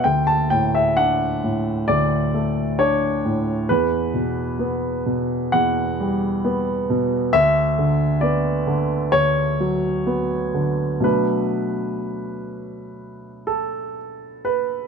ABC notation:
X:1
M:4/4
L:1/16
Q:1/4=65
K:Bm
V:1 name="Grand piano"
g a g e f4 d4 c4 | B8 f6 z2 | e4 d4 c8 | B8- B2 A4 B2 |]
V:2 name="Grand piano" clef=bass
D,,2 A,,2 D2 A,,2 D,,2 A,2 D2 A,,2 | E,,2 B,,2 B,2 B,,2 E,,2 G,2 B,2 B,,2 | D,,2 D,2 B,2 D,2 D,,2 F,2 B,2 D,2 | [B,,F,A,D]16 |]